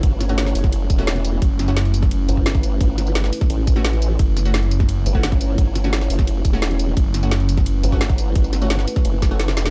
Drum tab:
RD |b-b-b-b-b-b-b-b-|b-b-b-b-b-b-b-b-|b-b-b-b-b-b-b-b-|b-b-b-b-b-b-b-b-|
HH |x-x-xxoxx-x-xxx-|x-x-xxxxx-x-xxx-|x-x-xxoxx-x-xxx-|x-x-xxxxx-x-xxx-|
TB |--xx--x---x---x-|--xx--x---x---x-|--xx--x---x---x-|--xx--x---x---x-|
SD |--o-oo-o---oo---|--o-o--o----o---|--o-oo-o---oo---|--o-o--o----o---|
BD |o------o--o-----|o------o---o-o--|o------o--o-----|o------o---o-o--|

RD |b-b-b-b-b-b-b-b-|b-b-b-b-b-b-b-b-|b-b-b-b-b-b-b-b-|
HH |x-x-xxoxx-x-xxx-|x-x-xxxxx-x-xxx-|x-x-xxoxx-x-xxx-|
TB |--xx--x---x---x-|--xx--x---x---x-|-xxx--x---x---xx|
SD |--o-oo-o---oo---|--o-o--o----o---|--o-oo-o--o-oooo|
BD |o------o--o-----|o------o---o-o--|o------o--o-----|